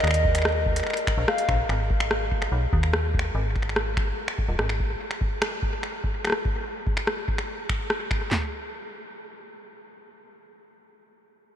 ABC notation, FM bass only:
X:1
M:4/4
L:1/16
Q:1/4=145
K:Ablyd
V:1 name="FM bass" clef=bass
E,,8 z3 B,,, z2 B,,, z | A,,,8 _C,, z E,,6 | A,,,8 z3 E,,, A,,,4 | z16 |
z16 | z16 | z16 |]